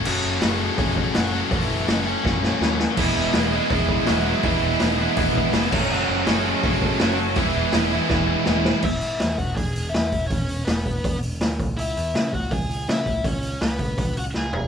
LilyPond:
<<
  \new Staff \with { instrumentName = "Lead electric guitar" } { \time 4/4 \key e \major \tempo 4 = 164 <fis fis'>4 <gis gis'>4 <gis gis'>4 <fis fis'>4 | <e e'>4 <dis' dis''>8 <cis' cis''>2 r8 | <e e'>4 <gis gis'>8 <gis gis'>4. <fis fis'>4 | <e e'>4 <dis' dis''>8 <b b'>2 r8 |
<fis fis'>4 <gis gis'>4 <gis gis'>4 <fis fis'>4 | <e e'>2.~ <e e'>8 r8 | <e' e''>4. <fis' fis''>8 <gis' gis''>4 <e' e''>4 | <cis' cis''>4 <b b'>4. r4. |
<e' e''>4. <fis' fis''>8 <gis' gis''>4 <e' e''>4 | <cis' cis''>4 <b b'>4. <fis' fis''>8 <gis' gis''>8 <gis' gis''>8 | }
  \new Staff \with { instrumentName = "Distorted electric guitar" } { \time 4/4 \key e \major <fis cis' fis' a'>4 <fis cis' fis' a'>8 <fis cis' fis' a'>8 <fis cis' fis' a'>4 <fis cis' fis' a'>8 <fis cis' fis' a'>8 | <fis cis' fis' a'>4 <fis cis' fis' a'>8 <fis cis' fis' a'>8 <fis cis' fis' a'>4 <fis cis' fis' a'>8 <fis cis' fis' a'>8 | <e gis b e' gis'>4 <e gis b e' gis'>8 <e gis b e' gis'>8 <e gis b e' gis'>4 <e gis b e' gis'>8 <e gis b e' gis'>8 | <e gis b e' gis'>4 <e gis b e' gis'>8 <e gis b e' gis'>8 <e gis b e' gis'>4 <e gis b e' gis'>8 <fis cis' fis' a'>8 |
<fis cis' fis' a'>4 <fis cis' fis' a'>8 <fis cis' fis' a'>8 <fis cis' fis' a'>4 <fis cis' fis' a'>8 <fis cis' fis' a'>8 | <e gis b e' gis'>4 <e gis b e' gis'>8 <e gis b e' gis'>8 <e gis b e' gis'>4 <e gis b e' gis'>8 <e gis b e' gis'>8 | r1 | r1 |
r1 | r1 | }
  \new Staff \with { instrumentName = "Distorted electric guitar" } { \time 4/4 \key e \major <fis cis' fis' a'>4 <fis cis' fis' a'>2~ <fis cis' fis' a'>8 <fis cis' fis' a'>8~ | <fis cis' fis' a'>4 <fis cis' fis' a'>2~ <fis cis' fis' a'>8 r8 | <e gis b e' gis'>4. <e gis b e' gis'>2~ <e gis b e' gis'>8 | <e gis b e' gis'>4. <e gis b e' gis'>2 <fis cis' fis' a'>8~ |
<fis cis' fis' a'>4 <fis cis' fis' a'>2~ <fis cis' fis' a'>8 r8 | <e gis b e' gis'>4. <e gis b e' gis'>2~ <e gis b e' gis'>8 | r1 | r1 |
r1 | r1 | }
  \new Staff \with { instrumentName = "Distorted electric guitar" } { \time 4/4 \key e \major r1 | r1 | <e gis b e'>4 <e gis b e'>8 <e gis b e'>8 <e gis b e'>4 <e gis b e'>8 <e gis b e'>8 | <e gis b e'>4 <e gis b e'>8 <e gis b e'>8 <e gis b e'>4 <e gis b e'>8 <fis a cis' fis'>8 |
<fis a cis' fis'>4 <fis a cis' fis'>8 <fis a cis' fis'>8 <fis a cis' fis'>4 <fis a cis' fis'>8 <fis a cis' fis'>8 | <e gis b e'>4 <e gis b e'>8 <e gis b e'>8 <e gis b e'>4 <e gis b e'>8 <e gis b e'>8 | r1 | r1 |
r1 | r1 | }
  \new Staff \with { instrumentName = "Picked electric bass" } { \clef bass \time 4/4 \key e \major fis,,8 fis,,8 fis,,4 fis,,4 fis,,4 | fis,,8 fis,,8 fis,,4 fis,,4 dis,4 | e,,8 e,,8 e,,4 e,,4 e,,4 | e,,8 e,,8 e,,4 e,,4 f,,8 fis,,8 |
fis,,8 fis,,8 fis,,4 fis,,4 fis,,4 | e,,8 e,,8 e,,4 e,,4 e,,4 | e,,8 gis,,8 e,8 e,,8 e,,8 e,,8 e,8 e,,8 | e,,4 e,,8 e,,8 e,,8 e,,8 dis,8 cis,8 |
cis,8 e,8 cis8 cis,8 cis,8 cis,8 cis8 cis,8 | cis,4 cis,8 cis,8 cis,8 cis,8 cis,8 e,,8 | }
  \new DrumStaff \with { instrumentName = "Drums" } \drummode { \time 4/4 cymc4 <hho sn>4 <hho bd>8 bd8 <hho sn>4 | <hho bd>4 <hho sn>4 <bd sn>8 sn8 sn8 sn8 | <cymc bd>4 <hho sn>4 <hho bd>8 bd8 <hho sn>4 | <hho bd>4 <hho sn>4 <hho bd>8 bd8 <hho sn>8 <cymc bd>8 |
r4 <hho sn>4 <hho bd>8 bd8 <hho sn>4 | <hho bd>4 <hho sn>4 <bd sn>4 sn8 sn8 | <cymc bd>8 hho8 <hho sn>8 <hho bd>8 <hho bd>8 hho8 <hho sn>8 <hho bd>8 | <hho bd>8 hho8 <hho sn>8 <hho bd>8 <hho bd>8 hho8 <hho sn>8 <hho bd>8 |
hho8 hho8 <hho sn>8 <hho bd>8 <hho bd>8 hho8 <hho sn>8 <hho bd>8 | <hho bd>8 hho8 <hho sn>8 <hho bd>8 <hho bd>8 hho8 sn8 tomfh8 | }
>>